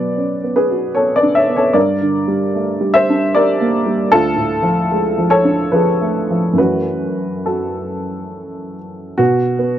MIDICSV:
0, 0, Header, 1, 2, 480
1, 0, Start_track
1, 0, Tempo, 786370
1, 1072, Time_signature, 3, 2, 24, 8
1, 2983, Tempo, 841515
1, 3943, Tempo, 882353
1, 4903, Tempo, 835655
1, 5738, End_track
2, 0, Start_track
2, 0, Title_t, "Upright piano"
2, 0, Program_c, 0, 0
2, 0, Control_c, 0, 64, 127
2, 0, Note_on_c, 0, 47, 46
2, 0, Note_on_c, 0, 54, 34
2, 0, Note_on_c, 0, 59, 37
2, 0, Note_on_c, 0, 71, 53
2, 0, Note_on_c, 0, 74, 70
2, 105, Note_on_c, 0, 61, 31
2, 208, Note_off_c, 0, 59, 0
2, 267, Note_off_c, 0, 61, 0
2, 267, Note_on_c, 0, 59, 36
2, 324, Note_off_c, 0, 71, 0
2, 341, Note_on_c, 0, 71, 66
2, 343, Note_on_c, 0, 68, 54
2, 349, Note_off_c, 0, 74, 0
2, 428, Note_on_c, 0, 66, 37
2, 525, Note_off_c, 0, 59, 0
2, 570, Note_off_c, 0, 68, 0
2, 577, Note_on_c, 0, 73, 70
2, 584, Note_on_c, 0, 59, 33
2, 586, Note_off_c, 0, 71, 0
2, 588, Note_on_c, 0, 69, 51
2, 686, Note_off_c, 0, 66, 0
2, 701, Note_off_c, 0, 69, 0
2, 704, Note_off_c, 0, 73, 0
2, 707, Note_on_c, 0, 74, 76
2, 711, Note_on_c, 0, 71, 52
2, 749, Note_on_c, 0, 62, 40
2, 823, Note_off_c, 0, 71, 0
2, 824, Note_on_c, 0, 76, 80
2, 829, Note_off_c, 0, 74, 0
2, 830, Note_on_c, 0, 73, 62
2, 844, Note_off_c, 0, 59, 0
2, 905, Note_on_c, 0, 59, 39
2, 942, Note_off_c, 0, 73, 0
2, 948, Note_off_c, 0, 76, 0
2, 955, Note_on_c, 0, 73, 68
2, 962, Note_on_c, 0, 69, 51
2, 1007, Note_off_c, 0, 62, 0
2, 1049, Note_off_c, 0, 47, 0
2, 1058, Note_on_c, 0, 74, 74
2, 1062, Note_on_c, 0, 43, 49
2, 1067, Note_on_c, 0, 70, 59
2, 1069, Note_off_c, 0, 59, 0
2, 1069, Note_off_c, 0, 69, 0
2, 1074, Note_off_c, 0, 73, 0
2, 1081, Control_c, 0, 64, 0
2, 1083, Note_off_c, 0, 54, 0
2, 1183, Control_c, 0, 64, 127
2, 1230, Note_on_c, 0, 50, 36
2, 1391, Note_on_c, 0, 55, 43
2, 1490, Note_off_c, 0, 50, 0
2, 1554, Note_on_c, 0, 57, 36
2, 1650, Note_off_c, 0, 55, 0
2, 1714, Note_off_c, 0, 57, 0
2, 1714, Note_on_c, 0, 55, 44
2, 1767, Note_off_c, 0, 70, 0
2, 1787, Note_off_c, 0, 74, 0
2, 1793, Note_on_c, 0, 76, 95
2, 1802, Note_on_c, 0, 72, 68
2, 1891, Note_on_c, 0, 62, 49
2, 1965, Note_off_c, 0, 55, 0
2, 2016, Note_off_c, 0, 72, 0
2, 2028, Note_off_c, 0, 76, 0
2, 2042, Note_on_c, 0, 74, 87
2, 2050, Note_on_c, 0, 70, 61
2, 2052, Note_on_c, 0, 55, 47
2, 2131, Note_off_c, 0, 62, 0
2, 2201, Note_on_c, 0, 58, 50
2, 2291, Note_off_c, 0, 55, 0
2, 2358, Note_on_c, 0, 55, 50
2, 2445, Note_off_c, 0, 58, 0
2, 2471, Note_off_c, 0, 43, 0
2, 2487, Note_off_c, 0, 70, 0
2, 2507, Note_off_c, 0, 74, 0
2, 2508, Note_off_c, 0, 55, 0
2, 2509, Control_c, 0, 64, 0
2, 2512, Note_on_c, 0, 69, 98
2, 2516, Note_on_c, 0, 38, 61
2, 2521, Note_on_c, 0, 65, 74
2, 2596, Control_c, 0, 64, 127
2, 2662, Note_on_c, 0, 45, 43
2, 2823, Note_on_c, 0, 53, 50
2, 2920, Note_off_c, 0, 45, 0
2, 3001, Note_on_c, 0, 56, 42
2, 3079, Note_off_c, 0, 53, 0
2, 3148, Note_off_c, 0, 56, 0
2, 3150, Note_on_c, 0, 53, 42
2, 3205, Note_off_c, 0, 65, 0
2, 3214, Note_off_c, 0, 69, 0
2, 3219, Note_on_c, 0, 73, 85
2, 3223, Note_on_c, 0, 69, 73
2, 3302, Note_on_c, 0, 62, 43
2, 3397, Note_off_c, 0, 53, 0
2, 3440, Note_off_c, 0, 69, 0
2, 3455, Note_off_c, 0, 73, 0
2, 3457, Note_on_c, 0, 71, 65
2, 3461, Note_on_c, 0, 53, 42
2, 3471, Note_on_c, 0, 68, 51
2, 3552, Note_off_c, 0, 62, 0
2, 3627, Note_on_c, 0, 57, 41
2, 3714, Note_off_c, 0, 53, 0
2, 3791, Note_on_c, 0, 53, 39
2, 3883, Note_off_c, 0, 57, 0
2, 3922, Note_on_c, 0, 42, 41
2, 3928, Note_off_c, 0, 38, 0
2, 3929, Note_off_c, 0, 68, 0
2, 3932, Note_on_c, 0, 52, 37
2, 3936, Note_on_c, 0, 57, 32
2, 3941, Note_off_c, 0, 71, 0
2, 3949, Note_on_c, 0, 71, 69
2, 3950, Note_on_c, 0, 61, 31
2, 3951, Note_off_c, 0, 53, 0
2, 3954, Control_c, 0, 64, 0
2, 3954, Note_on_c, 0, 66, 58
2, 4052, Control_c, 0, 64, 127
2, 4411, Note_off_c, 0, 66, 0
2, 4426, Note_on_c, 0, 69, 52
2, 4431, Note_off_c, 0, 71, 0
2, 4433, Note_on_c, 0, 66, 40
2, 5132, Note_off_c, 0, 66, 0
2, 5151, Note_off_c, 0, 69, 0
2, 5361, Note_off_c, 0, 42, 0
2, 5366, Note_off_c, 0, 52, 0
2, 5368, Note_off_c, 0, 57, 0
2, 5375, Note_off_c, 0, 61, 0
2, 5386, Note_on_c, 0, 66, 84
2, 5394, Note_on_c, 0, 47, 52
2, 5406, Control_c, 0, 64, 0
2, 5495, Control_c, 0, 64, 127
2, 5624, Note_on_c, 0, 59, 49
2, 5738, Note_off_c, 0, 47, 0
2, 5738, Note_off_c, 0, 59, 0
2, 5738, Note_off_c, 0, 66, 0
2, 5738, End_track
0, 0, End_of_file